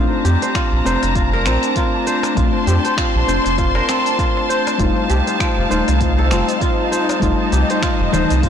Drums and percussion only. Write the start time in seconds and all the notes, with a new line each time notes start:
0.25 open hi-hat, cabasa
0.42 open hi-hat, darbuka ka, cabasa
0.55 finger snap, kick, open hi-hat, cabasa
0.86 darbuka tek, cabasa
1.03 open hi-hat, darbuka ka, cabasa
1.15 kick, open hi-hat, cabasa
1.33 darbuka ka
1.46 finger snap, open hi-hat, cabasa
1.63 open hi-hat, cabasa
1.76 kick, open hi-hat, cabasa
2.07 cabasa
2.23 open hi-hat, darbuka ka, darbuka tek, cabasa
2.37 kick, open hi-hat, cabasa
2.67 open hi-hat, cabasa
2.84 open hi-hat, darbuka ka, cabasa
2.97 finger snap, kick, open hi-hat, cabasa
3.29 cabasa
3.44 open hi-hat, darbuka ka, cabasa
3.58 kick, open hi-hat, cabasa
3.75 darbuka ka, darbuka tek
3.88 finger snap, open hi-hat, darbuka tek, cabasa
4.06 open hi-hat, cabasa
4.19 kick, open hi-hat, cabasa
4.37 darbuka tek
4.50 cabasa
4.67 open hi-hat, darbuka tek, cabasa
4.79 kick, open hi-hat, cabasa
5.10 open hi-hat, cabasa
5.27 open hi-hat, darbuka ka, cabasa
5.40 finger snap, kick, open hi-hat, cabasa
5.71 darbuka tek, cabasa
5.88 open hi-hat, darbuka ka, cabasa
6.01 kick, open hi-hat, cabasa
6.18 darbuka ka
6.31 finger snap, open hi-hat, cabasa
6.49 open hi-hat, cabasa
6.61 kick, open hi-hat, cabasa
6.93 cabasa
7.09 open hi-hat, darbuka ka, darbuka tek, cabasa
7.22 kick, open hi-hat, cabasa
7.52 open hi-hat, cabasa
7.70 open hi-hat, darbuka ka, cabasa
7.83 finger snap, kick, open hi-hat, cabasa
8.13 darbuka dum, cabasa
8.30 open hi-hat, darbuka ka, cabasa
8.43 kick, open hi-hat, cabasa